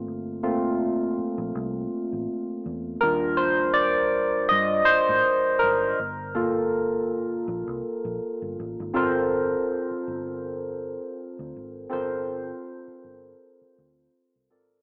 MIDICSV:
0, 0, Header, 1, 4, 480
1, 0, Start_track
1, 0, Key_signature, -2, "minor"
1, 0, Tempo, 740741
1, 34, Time_signature, 4, 2, 24, 8
1, 9605, End_track
2, 0, Start_track
2, 0, Title_t, "Tine electric piano"
2, 0, Program_c, 0, 4
2, 0, Control_c, 0, 64, 127
2, 0, Note_on_c, 0, 57, 49
2, 0, Note_on_c, 0, 58, 43
2, 0, Note_on_c, 0, 60, 43
2, 0, Note_on_c, 0, 65, 57
2, 281, Note_off_c, 0, 57, 0
2, 281, Note_off_c, 0, 58, 0
2, 281, Note_on_c, 0, 57, 56
2, 281, Note_on_c, 0, 58, 49
2, 283, Note_off_c, 0, 65, 0
2, 283, Note_on_c, 0, 65, 57
2, 284, Note_off_c, 0, 60, 0
2, 284, Note_on_c, 0, 60, 51
2, 972, Note_off_c, 0, 57, 0
2, 972, Note_off_c, 0, 58, 0
2, 973, Note_off_c, 0, 60, 0
2, 973, Note_off_c, 0, 65, 0
2, 1949, Note_on_c, 0, 70, 88
2, 1950, Note_on_c, 0, 55, 51
2, 1960, Note_on_c, 0, 62, 51
2, 1961, Note_on_c, 0, 65, 57
2, 1962, Control_c, 0, 64, 0
2, 2058, Note_off_c, 0, 70, 0
2, 2059, Control_c, 0, 64, 127
2, 2184, Note_on_c, 0, 72, 90
2, 2421, Note_on_c, 0, 74, 99
2, 2437, Note_off_c, 0, 72, 0
2, 2646, Note_off_c, 0, 55, 0
2, 2651, Note_off_c, 0, 62, 0
2, 2652, Note_off_c, 0, 65, 0
2, 2908, Note_on_c, 0, 75, 105
2, 2922, Note_off_c, 0, 74, 0
2, 3144, Note_on_c, 0, 72, 92
2, 3158, Note_off_c, 0, 75, 0
2, 3603, Note_off_c, 0, 72, 0
2, 3623, Note_on_c, 0, 70, 79
2, 3883, Control_c, 0, 64, 0
2, 4007, Control_c, 0, 64, 127
2, 4114, Note_on_c, 0, 58, 54
2, 4114, Note_on_c, 0, 69, 55
2, 4122, Note_on_c, 0, 65, 62
2, 4440, Note_off_c, 0, 58, 0
2, 4440, Note_off_c, 0, 69, 0
2, 4444, Note_off_c, 0, 65, 0
2, 5523, Note_off_c, 0, 70, 0
2, 5790, Note_on_c, 0, 60, 65
2, 5794, Note_on_c, 0, 65, 65
2, 5797, Note_on_c, 0, 69, 61
2, 5803, Control_c, 0, 64, 0
2, 5805, Note_on_c, 0, 70, 65
2, 5809, Note_on_c, 0, 72, 75
2, 5912, Control_c, 0, 64, 127
2, 7686, Note_off_c, 0, 60, 0
2, 7688, Note_off_c, 0, 65, 0
2, 7690, Note_off_c, 0, 69, 0
2, 7694, Note_off_c, 0, 70, 0
2, 7696, Note_off_c, 0, 72, 0
2, 7708, Note_on_c, 0, 60, 70
2, 7713, Note_on_c, 0, 65, 59
2, 7717, Note_on_c, 0, 69, 59
2, 7724, Note_on_c, 0, 70, 57
2, 7729, Note_on_c, 0, 72, 74
2, 9365, Note_off_c, 0, 60, 0
2, 9368, Note_off_c, 0, 65, 0
2, 9370, Note_off_c, 0, 69, 0
2, 9373, Note_off_c, 0, 70, 0
2, 9376, Note_off_c, 0, 72, 0
2, 9398, Note_on_c, 0, 60, 47
2, 9398, Note_on_c, 0, 65, 47
2, 9400, Note_on_c, 0, 69, 44
2, 9406, Note_on_c, 0, 70, 45
2, 9408, Note_on_c, 0, 74, 51
2, 9605, Note_off_c, 0, 60, 0
2, 9605, Note_off_c, 0, 65, 0
2, 9605, Note_off_c, 0, 69, 0
2, 9605, Note_off_c, 0, 70, 0
2, 9605, Note_off_c, 0, 74, 0
2, 9605, End_track
3, 0, Start_track
3, 0, Title_t, "Fingered electric bass"
3, 0, Program_c, 1, 33
3, 48, Note_on_c, 1, 31, 102
3, 735, Note_off_c, 1, 31, 0
3, 893, Note_on_c, 1, 34, 93
3, 979, Note_off_c, 1, 34, 0
3, 1006, Note_on_c, 1, 36, 94
3, 1194, Note_off_c, 1, 36, 0
3, 1379, Note_on_c, 1, 33, 84
3, 1462, Note_off_c, 1, 33, 0
3, 1723, Note_on_c, 1, 40, 84
3, 1912, Note_off_c, 1, 40, 0
3, 1964, Note_on_c, 1, 39, 100
3, 2893, Note_off_c, 1, 39, 0
3, 2925, Note_on_c, 1, 43, 99
3, 3114, Note_off_c, 1, 43, 0
3, 3298, Note_on_c, 1, 45, 84
3, 3382, Note_off_c, 1, 45, 0
3, 3648, Note_on_c, 1, 32, 81
3, 3836, Note_off_c, 1, 32, 0
3, 3884, Note_on_c, 1, 31, 93
3, 4813, Note_off_c, 1, 31, 0
3, 4846, Note_on_c, 1, 34, 101
3, 4944, Note_off_c, 1, 34, 0
3, 4972, Note_on_c, 1, 36, 79
3, 5058, Note_off_c, 1, 36, 0
3, 5215, Note_on_c, 1, 34, 88
3, 5300, Note_off_c, 1, 34, 0
3, 5456, Note_on_c, 1, 31, 81
3, 5541, Note_off_c, 1, 31, 0
3, 5570, Note_on_c, 1, 33, 85
3, 5667, Note_off_c, 1, 33, 0
3, 5701, Note_on_c, 1, 32, 83
3, 5783, Note_off_c, 1, 32, 0
3, 5806, Note_on_c, 1, 31, 88
3, 6187, Note_off_c, 1, 31, 0
3, 6530, Note_on_c, 1, 31, 76
3, 7105, Note_off_c, 1, 31, 0
3, 7382, Note_on_c, 1, 38, 77
3, 7464, Note_off_c, 1, 38, 0
3, 7492, Note_on_c, 1, 32, 76
3, 7678, Note_off_c, 1, 32, 0
3, 7731, Note_on_c, 1, 31, 92
3, 8110, Note_off_c, 1, 31, 0
3, 8451, Note_on_c, 1, 31, 67
3, 8638, Note_off_c, 1, 31, 0
3, 8932, Note_on_c, 1, 38, 79
3, 9118, Note_off_c, 1, 38, 0
3, 9303, Note_on_c, 1, 36, 72
3, 9385, Note_off_c, 1, 36, 0
3, 9408, Note_on_c, 1, 32, 76
3, 9596, Note_off_c, 1, 32, 0
3, 9605, End_track
4, 0, Start_track
4, 0, Title_t, "Muted fingered electric bass strokes"
4, 767, Note_on_c, 9, 29, 40
4, 832, Note_off_c, 9, 29, 0
4, 6421, Note_on_c, 9, 29, 41
4, 6486, Note_off_c, 9, 29, 0
4, 8344, Note_on_c, 9, 29, 40
4, 8409, Note_off_c, 9, 29, 0
4, 8822, Note_on_c, 9, 29, 35
4, 8887, Note_off_c, 9, 29, 0
4, 9605, End_track
0, 0, End_of_file